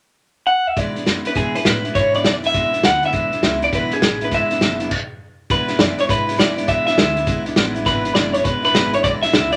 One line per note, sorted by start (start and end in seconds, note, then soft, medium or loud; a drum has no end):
0.47 0.67 F#5 loud
0.67 0.78 E5 medium
0.77 1.05 E2 medium
0.77 0.96 E2 medium
0.77 0.96 E3 medium
0.77 0.96 G#3 medium
0.77 0.95 B3 medium
0.77 0.96 D4 medium
0.77 0.94 E4 medium
0.77 1.07 D5 loud
0.77 kick loud
0.77 closed hi-hat medium
0.95 1.05 G#3 soft
0.95 1.07 B3 medium
0.95 1.06 D4 soft
0.95 1.06 E4 medium
0.95 closed hi-hat medium
1.06 1.35 F#2 medium
1.06 1.25 G#3 medium
1.06 1.25 B3 medium
1.06 1.26 D4 medium
1.06 1.25 E4 medium
1.06 snare medium
1.06 closed hi-hat medium
1.25 1.35 G#3 soft
1.25 1.36 B3 medium
1.25 1.35 D4 soft
1.25 1.36 E4 medium
1.25 1.31 B4 loud
1.25 closed hi-hat medium
1.35 1.54 E2 medium
1.35 1.65 B2 medium
1.35 1.55 E3 medium
1.35 1.55 G#3 medium
1.35 1.55 B3 medium
1.35 1.55 D4 medium
1.35 1.53 E4 medium
1.35 1.55 G#4 medium
1.35 kick loud
1.35 closed hi-hat medium
1.54 1.63 G#3 soft
1.54 1.66 B3 soft
1.54 1.64 D4 soft
1.54 1.65 E4 soft
1.54 1.65 B4 medium
1.54 closed hi-hat medium
1.64 1.95 A2 loud
1.64 1.84 G#3 medium
1.64 1.84 B3 medium
1.64 1.85 D4 medium
1.64 1.82 E4 medium
1.64 1.93 B4 medium
1.64 snare loud
1.64 closed hi-hat medium
1.83 1.95 G#3 soft
1.83 1.95 B3 medium
1.83 1.95 D4 soft
1.83 1.94 E4 medium
1.83 closed hi-hat medium
1.95 2.14 E2 medium
1.95 2.24 G#2 medium
1.95 2.14 E3 medium
1.95 2.14 G#3 medium
1.95 2.14 B3 medium
1.95 2.15 D4 medium
1.95 2.13 E4 medium
1.95 2.15 C#5 loud
1.95 kick loud
1.95 closed hi-hat medium
2.14 2.22 G#3 soft
2.14 2.25 B3 medium
2.14 2.24 D4 soft
2.14 2.25 E4 medium
2.14 2.25 D5 medium
2.14 closed hi-hat medium
2.24 2.53 F#2 medium
2.24 2.43 G#3 medium
2.24 2.43 B3 medium
2.24 2.44 D4 medium
2.24 2.42 E4 medium
2.24 2.32 D5 medium
2.24 snare loud
2.24 closed hi-hat medium
2.43 2.53 G#3 soft
2.43 2.54 B3 soft
2.43 2.53 D4 soft
2.43 2.54 E4 medium
2.43 2.85 E5 loud
2.43 closed hi-hat medium
2.53 2.73 E2 medium
2.53 2.83 E2 medium
2.53 2.73 E3 medium
2.53 2.73 G#3 loud
2.53 2.72 B3 medium
2.53 2.73 D4 medium
2.53 2.70 E4 medium
2.53 kick loud
2.53 closed hi-hat medium
2.72 2.82 G#3 soft
2.72 2.84 B3 medium
2.72 2.84 D4 soft
2.72 2.83 E4 soft
2.72 closed hi-hat medium
2.83 3.12 D2 medium
2.83 3.03 G#3 medium
2.83 3.02 B3 medium
2.83 3.03 D4 medium
2.83 3.01 E4 medium
2.83 3.04 F#5 loud
2.83 snare loud
2.83 closed hi-hat medium
3.02 3.12 G#3 soft
3.02 3.12 B3 medium
3.02 3.12 D4 soft
3.02 3.13 E4 medium
3.02 3.65 E5 medium
3.02 closed hi-hat medium
3.12 3.42 B1 medium
3.12 3.32 E2 medium
3.12 3.32 E3 medium
3.12 3.32 G#3 medium
3.12 3.32 B3 medium
3.12 3.32 D4 medium
3.12 3.30 E4 medium
3.12 kick loud
3.12 closed hi-hat medium
3.32 3.42 G#3 medium
3.32 3.43 B3 medium
3.32 3.43 D4 soft
3.32 3.42 E4 medium
3.32 closed hi-hat medium
3.42 3.71 C#2 medium
3.42 3.62 G#3 medium
3.42 3.62 B3 medium
3.42 3.62 D4 medium
3.42 3.61 E4 medium
3.42 snare medium
3.42 closed hi-hat medium
3.62 3.73 G#3 soft
3.62 3.73 B3 medium
3.62 3.73 D4 soft
3.62 3.73 E4 medium
3.62 3.68 D5 medium
3.62 closed hi-hat medium
3.72 4.01 B1 medium
3.72 3.92 E2 medium
3.72 3.92 E3 medium
3.72 3.92 G#3 medium
3.72 3.93 B3 medium
3.72 3.93 D4 medium
3.72 3.91 E4 medium
3.72 3.93 B4 medium
3.72 kick loud
3.72 closed hi-hat medium
3.91 4.03 B3 medium
3.91 4.02 D4 soft
3.91 4.02 E4 soft
3.91 4.23 G#4 medium
3.91 closed hi-hat medium
3.96 4.01 G#3 soft
4.02 4.31 A1 medium
4.02 4.21 G#3 medium
4.02 4.22 B3 medium
4.02 4.21 E4 medium
4.02 snare loud
4.02 closed hi-hat medium
4.21 4.33 B3 medium
4.21 4.33 D4 soft
4.21 4.32 E4 medium
4.21 4.33 B4 medium
4.21 closed hi-hat medium
4.25 4.32 G#3 soft
4.31 4.60 G#1 medium
4.31 4.51 E2 medium
4.31 4.51 E3 medium
4.31 4.51 G#3 medium
4.31 4.50 B3 medium
4.31 4.51 D4 medium
4.31 4.49 E4 medium
4.31 4.88 E5 medium
4.31 kick loud
4.31 closed hi-hat medium
4.50 4.60 G#3 medium
4.50 4.61 B3 medium
4.50 4.61 D4 soft
4.50 4.61 E4 medium
4.50 closed hi-hat medium
4.61 4.90 F#1 loud
4.61 4.80 G#3 medium
4.61 4.80 B3 medium
4.61 4.81 D4 medium
4.61 4.79 E4 medium
4.61 snare loud
4.61 closed hi-hat medium
4.80 4.92 G#3 medium
4.80 4.91 B3 medium
4.80 4.92 D4 medium
4.80 4.91 E4 medium
4.80 closed hi-hat medium
4.91 kick loud
4.91 crash medium
5.50 5.69 E2 medium
5.50 5.78 E2 medium
5.50 5.69 E3 medium
5.50 5.69 G#3 medium
5.50 5.68 B3 medium
5.50 5.69 D4 medium
5.50 5.67 E4 medium
5.50 5.81 B4 loud
5.50 kick loud
5.50 closed hi-hat medium
5.68 5.79 G#3 soft
5.68 5.79 B3 medium
5.68 5.80 D4 soft
5.68 5.79 E4 medium
5.68 snare soft
5.68 closed hi-hat medium
5.79 5.98 E2 medium
5.79 5.97 F#2 medium
5.79 5.98 E3 medium
5.79 5.99 G#3 medium
5.79 5.98 B3 medium
5.79 5.99 D4 medium
5.79 5.97 E4 medium
5.79 6.00 D5 medium
5.79 snare loud
5.79 closed hi-hat medium
5.98 6.07 G#3 soft
5.98 6.09 B3 medium
5.98 6.08 D4 medium
5.98 6.08 E4 medium
5.98 6.05 C#5 medium
5.98 muted upright bass stroke soft
5.98 closed hi-hat medium
6.08 6.37 G#2 medium
6.08 6.27 G#3 medium
6.08 6.27 B3 medium
6.08 6.28 D4 medium
6.08 6.25 E4 medium
6.08 6.39 B4 medium
6.08 kick loud
6.08 closed hi-hat medium
6.27 6.36 G#3 soft
6.27 6.37 B3 medium
6.27 6.37 D4 soft
6.27 6.38 E4 medium
6.27 closed hi-hat medium
6.37 6.57 E2 medium
6.37 6.67 F#2 medium
6.37 6.57 E3 medium
6.37 6.57 G#3 medium
6.37 6.56 B3 medium
6.37 6.57 D4 medium
6.37 6.55 E4 medium
6.37 6.68 D5 medium
6.37 snare loud
6.37 closed hi-hat medium
6.56 6.67 G#3 soft
6.56 6.68 B3 medium
6.56 6.68 D4 soft
6.56 6.67 E4 medium
6.56 closed hi-hat medium
6.67 6.86 E2 medium
6.67 6.97 E2 medium
6.67 6.87 E3 medium
6.67 6.87 G#3 medium
6.67 6.87 B3 medium
6.67 6.87 D4 loud
6.67 6.85 E4 medium
6.67 6.86 E5 loud
6.67 kick loud
6.67 closed hi-hat medium
6.87 6.97 G#3 medium
6.87 6.98 B3 medium
6.87 6.97 D4 medium
6.87 6.97 E4 medium
6.87 7.42 E5 medium
6.87 snare soft
6.87 closed hi-hat medium
6.97 7.26 D2 loud
6.97 7.16 E2 medium
6.97 7.17 E3 medium
6.97 7.17 G#3 medium
6.97 7.16 B3 medium
6.97 7.17 D4 medium
6.97 7.14 E4 medium
6.97 snare loud
6.97 closed hi-hat medium
7.16 7.25 G#3 soft
7.16 7.27 B3 medium
7.16 7.25 D4 medium
7.16 7.26 E4 medium
7.16 closed hi-hat medium
7.26 7.55 B1 loud
7.26 7.45 G#3 medium
7.26 7.45 B3 medium
7.26 7.46 D4 medium
7.26 7.44 E4 medium
7.26 kick loud
7.26 closed hi-hat medium
7.45 7.56 G#3 soft
7.45 7.56 B3 medium
7.45 7.56 D4 soft
7.45 7.56 E4 medium
7.45 closed hi-hat medium
7.56 7.85 A1 loud
7.56 7.75 E2 medium
7.56 7.76 E3 medium
7.56 7.76 G#3 medium
7.56 7.75 B3 medium
7.56 7.76 D4 loud
7.56 7.73 E4 loud
7.56 snare loud
7.56 closed hi-hat medium
7.75 7.85 G#3 medium
7.75 7.86 B3 medium
7.75 7.85 D4 medium
7.75 7.85 E4 medium
7.75 closed hi-hat soft
7.85 8.14 G#1 medium
7.85 8.04 E2 medium
7.85 8.05 E3 medium
7.85 8.05 G#3 medium
7.85 8.04 B3 medium
7.85 8.04 D4 medium
7.85 8.02 E4 medium
7.85 8.13 B4 loud
7.85 kick loud
7.85 snare soft
7.85 closed hi-hat medium
8.03 8.14 G#3 soft
8.03 8.15 B3 medium
8.03 8.15 D4 medium
8.03 8.14 E4 medium
8.03 closed hi-hat medium
8.14 8.44 F#1 loud
8.14 8.34 E2 medium
8.14 8.34 E3 medium
8.14 8.34 G#3 medium
8.14 8.32 B3 medium
8.14 8.34 D4 medium
8.14 8.31 E4 medium
8.14 8.33 D5 medium
8.14 snare loud
8.14 closed hi-hat medium
8.33 8.43 G#3 soft
8.33 8.44 B3 medium
8.33 8.44 D4 medium
8.33 8.44 E4 medium
8.33 8.44 C#5 medium
8.33 closed hi-hat medium
8.44 8.73 E1 medium
8.44 8.63 G#3 medium
8.44 8.63 B3 medium
8.44 8.64 D4 medium
8.44 8.61 E4 medium
8.44 8.64 B4 medium
8.44 kick loud
8.44 closed hi-hat medium
8.62 8.73 G#3 soft
8.62 8.74 B3 medium
8.62 8.74 D4 medium
8.62 8.73 E4 medium
8.62 8.94 B4 loud
8.62 closed hi-hat medium
8.74 9.03 G#1 medium
8.74 8.93 E2 medium
8.74 8.93 E3 medium
8.74 8.93 G#3 medium
8.74 8.93 B3 medium
8.74 8.93 D4 medium
8.74 8.91 E4 medium
8.74 snare loud
8.74 closed hi-hat loud
8.92 9.03 G#3 soft
8.92 9.04 B3 medium
8.92 9.04 D4 medium
8.92 9.03 E4 medium
8.92 9.04 C#5 medium
8.92 closed hi-hat medium
9.04 9.32 B1 medium
9.04 9.23 E2 medium
9.04 9.23 E3 medium
9.04 9.23 G#3 medium
9.04 9.23 B3 medium
9.04 9.23 D4 medium
9.04 9.22 E4 loud
9.04 9.09 D5 loud
9.04 kick loud
9.04 closed hi-hat medium
9.23 9.32 G#3 medium
9.23 9.33 B3 medium
9.23 9.33 D4 soft
9.23 9.33 E4 medium
9.23 9.52 E5 loud
9.23 snare soft
9.23 closed hi-hat medium
9.33 9.56 C#2 loud
9.33 9.52 E2 medium
9.33 9.52 E3 medium
9.33 9.52 G#3 medium
9.33 9.52 B3 medium
9.33 9.52 D4 medium
9.33 9.51 E4 medium
9.33 snare loud
9.33 closed hi-hat medium
9.52 9.56 B3 medium
9.52 9.56 E4 medium
9.52 9.56 D5 loud
9.52 closed hi-hat medium